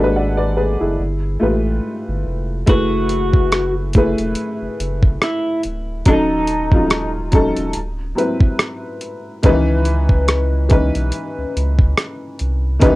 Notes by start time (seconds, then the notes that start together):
Already playing: G#1 G#3 D4 F#4 A4 B4
0.03 B4
0.16 D5 F#5
0.37 B4 D5
0.57 G#4 B4
0.80 F#1 E4 G#4
0.99 G1
1.40 A1 A3 F4 G4 B4
2.08 G1
2.27 F1
2.66 F#1 A3 E4 F#4 G#4 B4, kick, closed hi-hat
3.09 closed hi-hat
3.33 kick
3.52 cross-stick, closed hi-hat
3.93 A3 E4 G#4, kick, closed hi-hat
3.97 B4
4.18 E1, closed hi-hat
4.35 closed hi-hat
4.62 F#1
4.80 F#1, closed hi-hat
5.03 kick
5.21 E4, cross-stick, closed hi-hat
5.63 D1, closed hi-hat
6.05 D#1 F#3 C#4 D#4 A4, kick, closed hi-hat
6.47 closed hi-hat
6.72 F#3 C#4 D#4 F4, kick
6.90 cross-stick, closed hi-hat
7.31 F#3 C#4 D#4 A4, kick, closed hi-hat
7.57 D#1, closed hi-hat
7.73 D1, closed hi-hat
8.15 F#3 C4 E4 B4, closed hi-hat
8.41 kick
8.59 cross-stick, closed hi-hat
9.01 closed hi-hat
9.43 C#2 D#3 C#4 D#4 B4, kick, closed hi-hat
9.49 E3
9.85 closed hi-hat
10.10 kick
10.28 cross-stick, closed hi-hat
10.69 E3 C#4 D#4 B4, kick, closed hi-hat
10.95 B1, closed hi-hat
11.12 closed hi-hat
11.38 C#2
11.57 C#2, closed hi-hat
11.79 kick
11.98 cross-stick, closed hi-hat
12.39 C2, closed hi-hat
12.79 C#2 D#3 C#4 D#4 B4, kick, closed hi-hat
12.86 E3